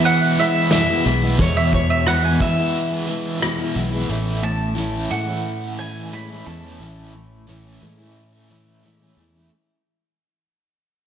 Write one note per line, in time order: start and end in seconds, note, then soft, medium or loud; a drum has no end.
0.00 0.71 E2 medium
0.00 0.23 E3 medium
0.00 1.01 E3 medium
0.00 0.22 G#3 medium
0.00 0.21 B3 medium
0.00 0.20 E4 medium
0.04 0.37 F#5 medium
0.04 open hi-hat soft
0.20 0.38 E3 soft
0.20 0.39 G#3 medium
0.20 0.39 B3 medium
0.20 0.40 E4 medium
0.38 0.72 E3 medium
0.38 0.73 G#3 medium
0.38 0.73 B3 medium
0.38 0.74 E4 medium
0.38 0.70 E5 medium
0.71 1.22 E2 medium
0.71 1.22 B2 medium
0.71 0.92 E3 medium
0.71 0.91 G#3 loud
0.71 0.89 B3 medium
0.71 0.88 E4 medium
0.71 1.04 E5 medium
0.71 snare medium
0.71 open hi-hat soft
0.89 1.05 E3 soft
0.89 1.06 G#3 medium
0.89 1.07 B3 medium
0.89 1.08 E4 medium
1.06 1.37 B1 medium
1.06 1.24 E3 medium
1.06 1.24 G#3 medium
1.06 1.22 B3 medium
1.06 1.21 E4 medium
1.22 1.40 E3 medium
1.22 1.40 G#3 medium
1.22 1.40 B3 medium
1.22 1.41 E4 medium
1.38 2.05 E2 medium
1.38 2.36 E2 medium
1.38 2.06 B2 medium
1.38 1.73 E3 medium
1.38 1.73 G#3 medium
1.38 1.73 B3 medium
1.38 1.74 E4 loud
1.38 1.55 C#5 medium
1.38 kick medium
1.38 open hi-hat soft
1.57 1.72 E5 medium
1.73 2.05 E3 medium
1.73 2.05 G#3 medium
1.73 2.05 B3 medium
1.73 2.05 E4 medium
1.73 1.89 C#5 medium
1.73 muted overdriven electric guitar stroke soft
1.73 kick medium
1.90 2.05 E5 medium
2.06 2.57 E2 medium
2.06 2.57 B2 medium
2.06 2.26 E3 medium
2.06 2.25 G#3 medium
2.06 2.23 B3 medium
2.06 2.22 E4 medium
2.06 2.22 F#5 medium
2.06 cross-stick medium
2.06 open hi-hat soft
2.23 2.40 E3 soft
2.23 2.41 G#3 medium
2.23 2.41 B3 medium
2.23 2.43 E4 medium
2.23 2.40 G#5 medium
2.40 2.59 E3 medium
2.40 3.71 E3 medium
2.40 2.58 G#3 medium
2.40 2.57 B3 medium
2.40 2.56 E4 medium
2.40 3.71 E5 medium
2.40 kick medium
2.56 2.93 E3 medium
2.56 2.92 G#3 medium
2.56 2.90 B3 medium
2.56 2.90 E4 medium
2.75 open hi-hat soft
2.90 3.06 E3 medium
2.90 3.08 G#3 medium
2.90 3.08 B3 medium
2.90 3.10 E4 medium
3.07 3.41 E3 medium
3.07 3.42 G#3 medium
3.07 3.41 B3 medium
3.07 3.43 E4 medium
3.39 3.91 E2 medium
3.39 3.91 B2 medium
3.39 3.60 E3 medium
3.39 3.59 G#3 medium
3.39 3.57 B3 medium
3.39 3.56 E4 medium
3.39 cross-stick loud
3.39 open hi-hat soft
3.57 3.74 E3 soft
3.57 3.75 G#3 soft
3.57 3.75 B3 medium
3.57 3.77 E4 medium
3.74 4.07 B1 medium
3.74 3.93 E3 medium
3.74 3.93 G#3 medium
3.74 3.90 B3 medium
3.74 3.90 E4 medium
3.91 4.09 E3 medium
3.91 4.10 G#3 medium
3.91 4.06 B3 medium
3.91 4.11 E4 medium
4.08 5.06 A1 medium
4.08 4.75 A2 medium
4.08 4.42 E3 medium
4.08 4.43 A3 medium
4.08 4.43 C#4 loud
4.08 4.43 E4 medium
4.43 4.76 E3 medium
4.43 4.76 C#4 medium
4.43 4.77 E4 medium
4.43 5.08 A5 medium
4.43 muted overdriven electric guitar stroke soft
4.75 6.10 A2 medium
4.75 5.10 E3 medium
4.75 4.96 A3 medium
4.75 4.94 C#4 medium
4.75 4.92 E4 medium
4.93 5.11 A3 medium
4.93 5.12 C#4 medium
4.93 5.13 E4 medium
5.10 6.42 A2 medium
5.10 5.77 E3 medium
5.10 5.27 G#3 medium
5.10 5.30 A3 medium
5.10 5.29 C#4 medium
5.10 5.27 E4 medium
5.10 5.76 F#5 loud
5.28 5.64 A3 medium
5.28 5.62 C#4 medium
5.28 5.61 E4 medium
5.61 5.79 A3 soft
5.61 5.79 C#4 medium
5.61 5.80 E4 medium
5.78 6.11 E3 medium
5.78 6.12 A3 medium
5.78 6.13 C#4 medium
5.78 6.14 E4 medium
5.78 6.11 G#5 medium
6.11 6.79 A2 medium
6.11 6.45 E3 medium
6.11 6.29 G#3 medium
6.11 6.31 A3 loud
6.11 6.30 C#4 medium
6.11 6.28 E4 medium
6.11 6.45 B5 medium
6.28 6.47 G#3 soft
6.28 6.46 A3 soft
6.28 6.47 C#4 medium
6.28 6.48 E4 medium
6.45 6.78 E2 medium
6.45 6.79 E3 medium
6.45 6.63 G#3 medium
6.45 6.65 A3 medium
6.45 6.63 C#4 medium
6.45 6.61 E4 medium
6.45 7.77 A5 medium
6.63 6.81 G#3 soft
6.63 6.80 A3 medium
6.63 6.80 C#4 medium
6.63 6.82 E4 medium
6.79 7.77 A1 medium
6.79 7.46 A2 medium
6.79 7.13 E3 medium
6.79 7.13 A3 medium
6.79 7.14 C#4 medium
6.79 7.14 E4 medium
7.14 7.48 E3 medium
7.14 7.48 C#4 medium
7.14 7.48 E4 medium
7.14 muted overdriven electric guitar stroke soft
7.47 7.98 A2 medium
7.47 7.80 E3 medium
7.47 7.66 A3 medium
7.47 7.65 C#4 medium
7.47 7.63 E4 medium
7.64 7.81 A3 soft
7.64 7.82 C#4 medium
7.64 7.83 E4 medium
7.81 9.13 A2 medium
7.81 8.31 E3 medium
7.81 7.99 G#3 medium
7.81 8.01 A3 medium
7.81 7.99 C#4 medium
7.81 7.98 E4 medium
7.99 8.34 A3 medium
7.99 8.32 C#4 medium
7.99 8.31 E4 medium
8.32 8.48 A3 soft
8.32 8.50 C#4 soft
8.32 8.50 E4 medium
8.48 8.82 E3 medium
8.48 8.83 A3 medium
8.48 8.84 C#4 medium
8.48 8.85 E4 medium
8.83 9.33 A2 medium
8.83 9.15 E3 medium
8.83 9.00 G#3 medium
8.83 9.02 A3 medium
8.83 9.01 C#4 medium
8.83 8.99 E4 medium
9.00 9.17 G#3 soft
9.00 9.17 A3 soft
9.00 9.18 C#4 soft
9.00 9.18 E4 medium
9.16 9.48 E2 medium
9.16 9.48 E3 medium
9.16 9.34 G#3 medium
9.16 9.36 A3 medium
9.16 9.34 C#4 medium
9.16 9.33 E4 medium
9.34 9.51 G#3 soft
9.34 9.50 A3 medium
9.34 9.49 C#4 medium
9.34 9.48 E4 medium